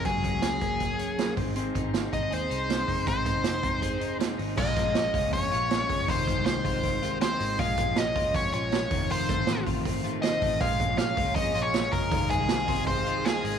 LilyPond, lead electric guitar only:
\new Staff \with { instrumentName = "Lead electric guitar" } { \time 4/4 \key bes \minor \tempo 4 = 159 aes'4 aes'2~ aes'8 r8 | r4. ees''8 c''2 | c''2. r4 | ees''2 des''2 |
c''4 c''2 c''4 | f''4 ees''4 des''8 des''4. | c''4. r4. ees''4 | f''4 f''4 ees''8. des''8. bes'8~ |
bes'8 aes'4. c''4 aes'4 | }